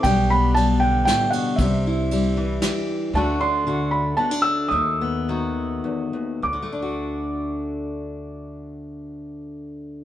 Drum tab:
RD |x-x-xx|x-x-x-|------|------|
SD |----o-|----o-|------|------|
BD |o-----|o-----|------|------|

RD |------|------|
SD |------|------|
BD |------|------|